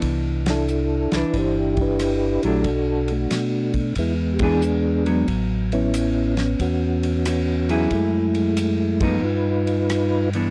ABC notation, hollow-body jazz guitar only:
X:1
M:4/4
L:1/8
Q:"Swing" 1/4=91
K:Alyd
V:1 name="Hollow-body jazz guitar"
[E,B,=D]2 z [E,D]3 z [F,A,D] | z4 z [E,B,=DG] z [F,B,]- | [F,B,]2 z4 z [F,EG]- | [F,EG]2 z [=F,B,D] z3 [E,B,=D] |]